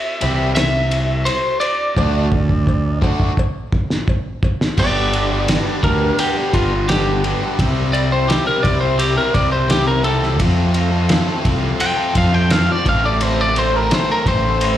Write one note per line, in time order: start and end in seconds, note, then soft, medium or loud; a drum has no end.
0.00 0.54 E5 medium
0.21 1.28 C2 medium
0.21 0.50 C3 medium
0.21 0.50 E3 medium
0.21 0.50 G3 medium
0.21 0.50 C4 loud
0.21 0.51 E4 medium
0.21 0.51 G4 loud
0.21 ride medium
0.21 cowbell medium
0.55 1.29 E5 loud
0.55 snare loud
0.55 ride medium
0.55 cowbell medium
0.91 ride medium
1.25 1.60 C5 medium
1.25 ride medium
1.25 cowbell medium
1.60 2.98 D5 medium
1.60 ride medium
1.60 cowbell medium
1.97 3.02 D2 loud
1.97 2.26 D3 medium
1.97 2.26 A3 loud
1.97 2.26 D4 loud
1.97 2.27 F#4 loud
1.97 kick medium
1.97 cowbell medium
2.32 kick medium
2.49 kick medium
2.67 kick medium
2.67 cowbell medium
3.02 3.31 D3 medium
3.02 3.31 A3 loud
3.02 3.31 D4 loud
3.02 3.32 F#4 loud
3.02 kick medium
3.02 cowbell medium
3.20 kick medium
3.37 kick medium
3.37 cowbell medium
3.72 kick medium
3.90 snare medium
4.08 kick loud
4.08 cowbell medium
4.43 kick loud
4.43 cowbell medium
4.61 snare medium
4.77 5.57 G1 loud
4.77 5.48 G2 medium
4.77 5.12 D3 medium
4.77 5.14 G3 medium
4.77 5.14 B3 medium
4.77 5.14 D4 loud
4.77 5.30 G4 loud
4.77 5.81 D5 medium
4.77 kick loud
4.77 crash loud
5.13 5.48 D3 medium
5.13 5.33 G3 medium
5.13 5.32 B3 medium
5.13 5.30 D4 medium
5.13 ride medium
5.30 5.50 G3 medium
5.30 5.50 B3 medium
5.30 5.50 D4 medium
5.30 5.49 G4 medium
5.48 6.19 G2 medium
5.48 5.81 D3 medium
5.48 5.83 G3 medium
5.48 5.83 B3 medium
5.48 5.84 D4 medium
5.48 5.65 G4 loud
5.48 snare loud
5.48 ride loud
5.66 6.38 G3 medium
5.66 6.37 B3 medium
5.66 6.36 D4 medium
5.66 6.36 G4 medium
5.82 6.10 D2 medium
5.82 6.52 D3 medium
5.82 6.38 G3 medium
5.82 6.36 B3 medium
5.82 6.34 D4 medium
5.82 6.18 A#4 medium
5.82 kick medium
5.82 ride medium
6.19 6.54 G4 medium
6.19 ride loud
6.35 6.54 G3 medium
6.35 6.53 B3 medium
6.35 6.54 D4 medium
6.35 6.55 G4 medium
6.53 7.33 G1 medium
6.53 6.89 D3 medium
6.53 6.73 G3 medium
6.53 6.71 B3 medium
6.53 6.70 D4 medium
6.53 6.88 F4 medium
6.53 6.72 G4 medium
6.53 kick medium
6.53 ride medium
6.71 6.90 G3 medium
6.71 6.89 B3 medium
6.71 6.90 D4 medium
6.71 muted overdriven electric guitar stroke soft
6.89 7.42 G2 medium
6.89 7.23 D3 medium
6.89 7.08 G3 loud
6.89 7.07 B3 medium
6.89 7.06 D4 loud
6.89 7.23 G4 loud
6.89 7.07 G4 medium
6.89 snare loud
6.89 ride medium
7.07 7.24 G3 medium
7.07 7.25 B3 medium
7.07 7.25 D4 medium
7.07 muted overdriven electric guitar stroke medium
7.24 7.57 D3 medium
7.24 7.44 G3 medium
7.24 7.41 B3 medium
7.24 7.40 D4 medium
7.24 7.42 G4 medium
7.24 ride medium
7.41 7.59 G3 medium
7.41 7.58 B3 medium
7.41 7.57 D4 medium
7.41 7.61 G4 medium
7.58 8.38 C2 medium
7.58 7.92 C3 medium
7.58 7.94 G3 loud
7.58 7.95 C4 loud
7.58 7.94 E4 loud
7.58 8.10 G4 loud
7.58 kick loud
7.58 ride medium
7.93 8.27 C3 medium
7.93 8.13 G3 medium
7.93 8.12 C4 medium
7.93 8.10 E4 medium
7.93 8.11 D5 medium
7.93 ride medium
8.11 8.29 G3 medium
8.11 8.30 C4 medium
8.11 8.29 E4 medium
8.11 8.30 G4 medium
8.11 8.29 C5 medium
8.28 8.64 C3 medium
8.28 8.65 G3 loud
8.28 8.66 C4 medium
8.28 8.66 E4 loud
8.28 8.46 G4 medium
8.28 8.45 G4 loud
8.28 snare loud
8.28 ride medium
8.46 9.17 C4 medium
8.46 9.15 E4 medium
8.46 9.14 G4 medium
8.46 8.64 A#4 medium
8.63 9.17 C2 medium
8.63 9.34 C3 medium
8.63 9.18 G3 medium
8.63 9.18 C4 medium
8.63 8.80 D5 medium
8.63 kick medium
8.63 ride medium
8.67 9.16 E4 medium
8.80 8.98 C5 medium
8.99 9.16 G4 medium
8.99 ride medium
9.15 9.37 C4 medium
9.15 9.36 E4 medium
9.15 9.35 G4 medium
9.15 9.34 A#4 medium
9.19 9.35 G3 medium
9.34 10.39 C2 medium
9.34 9.69 C3 medium
9.34 9.53 G3 medium
9.34 9.53 C4 medium
9.34 9.51 E4 medium
9.34 9.50 G4 medium
9.34 9.51 D5 medium
9.34 kick medium
9.34 ride medium
9.51 9.70 G3 medium
9.51 9.72 C4 medium
9.51 9.71 E4 medium
9.51 9.69 C5 medium
9.51 muted overdriven electric guitar stroke soft
9.70 10.05 C3 loud
9.70 9.90 G3 loud
9.70 9.89 C4 loud
9.70 9.88 E4 loud
9.70 9.85 G4 loud
9.70 9.87 G4 medium
9.70 snare loud
9.70 ride medium
9.86 10.07 C4 medium
9.86 10.07 E4 medium
9.86 10.04 A#4 medium
9.86 muted overdriven electric guitar stroke medium
9.91 10.05 G3 medium
10.04 10.39 C3 medium
10.04 10.25 G3 medium
10.04 10.22 C4 medium
10.04 10.19 G4 medium
10.04 10.39 A4 medium
10.04 ride medium
10.08 10.24 C4 medium
10.08 10.22 E4 medium
10.20 10.39 E4 medium
10.20 10.37 G4 medium
10.20 snare soft
10.25 10.40 G3 medium
10.25 10.42 C4 medium
10.39 11.19 F2 loud
10.39 10.76 F3 medium
10.39 10.78 A3 loud
10.39 10.79 C4 medium
10.39 10.91 F4 loud
10.39 10.91 A4 loud
10.39 kick loud
10.39 ride medium
10.44 10.78 F4 loud
10.74 11.10 F3 medium
10.74 ride medium
10.78 10.96 A3 medium
10.78 10.95 C4 medium
10.78 10.93 F4 medium
10.91 11.12 C4 medium
10.91 11.12 F4 medium
10.91 11.11 A4 medium
10.96 11.12 A3 medium
11.09 11.45 F3 medium
11.09 11.46 A3 medium
11.09 11.48 C4 medium
11.09 11.48 F4 loud
11.09 11.27 A4 loud
11.09 snare loud
11.09 ride medium
11.27 11.98 C4 medium
11.27 11.97 F4 medium
11.27 11.95 A4 medium
11.45 11.71 C2 medium
11.45 12.15 F3 medium
11.45 12.00 A3 medium
11.45 11.98 C4 medium
11.45 11.97 F4 medium
11.45 kick medium
11.45 ride medium
11.80 12.15 G5 loud
11.80 ride loud
11.97 12.16 C4 medium
11.97 12.17 F4 medium
11.97 12.15 A4 medium
12.01 12.16 A3 medium
12.15 12.68 F2 medium
12.15 12.50 F3 medium
12.15 12.34 A3 medium
12.15 12.33 C4 medium
12.15 12.33 F4 medium
12.15 12.31 A4 medium
12.15 12.34 F5 medium
12.15 kick medium
12.15 ride medium
12.32 12.50 A3 medium
12.32 12.52 C4 medium
12.32 12.53 F4 medium
12.32 12.52 G5 medium
12.32 muted overdriven electric guitar stroke soft
12.50 12.84 F3 loud
12.50 12.68 A3 loud
12.50 12.68 C4 loud
12.50 12.66 F4 loud
12.50 12.67 A4 loud
12.50 12.72 F5 medium
12.50 snare loud
12.50 ride medium
12.67 12.84 A3 medium
12.67 12.84 C4 medium
12.67 12.83 F4 medium
12.67 muted overdriven electric guitar stroke medium
12.72 12.87 D5 medium
12.84 13.91 A1 loud
12.84 13.18 A2 medium
12.84 13.19 E3 medium
12.84 13.03 A3 medium
12.84 13.02 C4 loud
12.84 13.01 E4 loud
12.84 13.02 A4 loud
12.84 kick loud
12.84 ride medium
12.89 13.04 F5 medium
13.02 13.19 A3 medium
13.02 13.20 C4 medium
13.02 13.21 E4 medium
13.02 13.21 A4 medium
13.02 13.23 D5 medium
13.19 13.89 A2 medium
13.19 13.53 E3 loud
13.19 13.55 A3 medium
13.19 13.55 C4 medium
13.19 13.56 E4 loud
13.19 13.72 A4 loud
13.19 13.41 C5 medium
13.19 ride medium
13.41 13.57 D5 medium
13.54 13.89 E3 medium
13.54 13.74 A3 medium
13.54 13.74 C4 medium
13.54 13.73 E4 medium
13.54 ride medium
13.59 13.76 C5 medium
13.73 13.91 A3 medium
13.73 13.91 C4 medium
13.73 13.91 E4 medium
13.73 13.92 A4 medium
13.73 13.94 A#4 medium
13.90 14.61 A2 medium
13.90 14.24 E3 medium
13.90 14.25 A3 medium
13.90 14.25 C4 medium
13.90 14.26 E4 medium
13.90 14.08 A4 loud
13.90 14.09 C5 medium
13.90 snare loud
13.90 ride medium
14.09 14.78 C4 medium
14.09 14.78 E4 medium
14.09 14.77 A4 medium
14.09 14.27 A#4 medium
14.25 14.78 A1 medium
14.25 14.78 E3 medium
14.25 14.78 A3 medium
14.25 14.78 C4 medium
14.25 14.77 E4 medium
14.25 14.78 C5 medium
14.25 kick medium
14.25 ride medium
14.61 ride loud